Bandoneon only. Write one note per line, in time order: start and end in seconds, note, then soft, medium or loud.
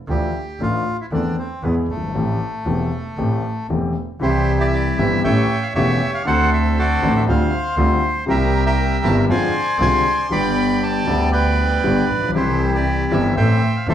0.10 0.62 G4 medium
0.62 0.97 F4 medium
1.01 1.06 E4 medium
1.13 1.36 D4 medium
1.39 1.62 C4 medium
1.64 1.75 B3 medium
1.90 3.67 A3 medium
4.22 5.20 E4 medium
4.22 5.21 G4 medium
4.22 4.58 C5 medium
4.61 4.67 D5 medium
4.67 4.74 E5 medium
4.74 4.97 D5 medium
4.99 5.23 E5 medium
5.24 5.74 C#5 medium
5.24 5.73 E5 medium
5.24 5.64 G5 medium
5.62 5.68 F5 medium
5.75 6.23 G4 medium
5.75 6.23 C#5 medium
5.75 6.11 E5 medium
6.14 6.26 F5 medium
6.26 6.77 A4 medium
6.26 7.24 C5 medium
6.26 6.50 F#5 loud
6.53 6.79 E5 medium
6.79 7.25 F#4 medium
6.79 7.25 A4 medium
6.79 7.13 D5 medium
7.16 7.22 E5 medium
7.28 8.25 C5 medium
7.28 7.76 F5 medium
8.29 9.26 G4 medium
8.29 8.65 A#4 medium
8.29 8.64 E5 medium
8.66 9.25 A#4 medium
8.66 9.25 E5 medium
8.66 9.05 G5 medium
9.05 9.16 A5 medium
9.30 10.27 C5 medium
9.30 10.27 D5 medium
9.30 9.77 G#5 medium
9.82 10.28 G#5 medium
9.82 10.33 C6 loud
10.32 10.82 D5 medium
10.32 11.29 G5 medium
10.32 10.83 B5 loud
10.83 11.31 D5 medium
10.83 11.30 A5 medium
11.32 12.31 B4 medium
11.32 12.31 D5 medium
11.32 12.05 G5 medium
12.35 13.33 E4 medium
12.35 12.73 G4 medium
12.35 12.72 C5 medium
12.75 13.34 G4 medium
12.75 13.14 D5 medium
13.12 13.35 E5 medium
13.37 13.88 C5 medium
13.37 13.87 E5 medium
13.37 13.76 G5 medium
13.76 13.87 F5 medium
13.89 13.94 A4 medium
13.89 13.94 C5 medium
13.89 13.94 E5 medium